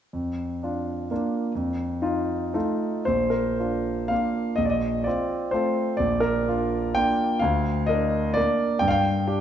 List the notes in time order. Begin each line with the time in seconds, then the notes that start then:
0.13 F2
0.63 D4 F4
1.11 A#3 D4 F4
1.55 F2
2.02 D#4 F4
2.54 A3 D#4 F4
3.05 A#1 C5
3.30 A#4
3.60 D4 F4
4.08 A#3 D4 F4 F5
4.56 A#1 D#5
4.65 D5
4.70 D#5
5.04 C4 F4 D5
5.51 A3 C4 F4 C5
5.97 A#1 D5
6.20 A#4
6.49 D4 F4
6.95 A#3 D4 F4 G5
7.39 D2 F5
7.87 D4 A#4 D#5
8.34 A#3 D4 A#4 D5
8.79 G2 G5
8.88 F5 G5
9.27 D4 G4